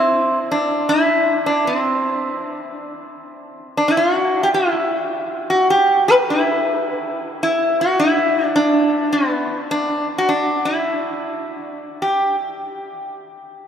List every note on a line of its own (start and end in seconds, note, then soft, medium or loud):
0.00 0.37 C4 medium
0.51 0.90 D4 medium
0.89 1.46 E4 loud
1.46 1.67 D4 medium
1.67 2.56 C4 medium
3.77 3.87 D4 medium
3.88 3.97 E4 medium
3.97 4.14 F4 medium
4.14 4.43 F#4 medium
4.43 4.48 G4 medium
4.54 4.97 E4 medium
5.50 5.70 F#4 medium
5.70 6.03 G4 loud
6.08 6.13 B4 loud
6.30 7.18 E4 medium
7.43 7.81 E4 loud
7.81 7.98 F#4 loud
7.99 8.44 E4 loud
8.44 8.55 D4 loud
8.56 9.15 D4 loud
9.13 9.56 B3 medium
9.71 10.07 D4 loud
10.18 10.29 F#4 loud
10.29 10.66 D4 medium
10.65 11.76 E4 medium
12.02 12.35 G4 medium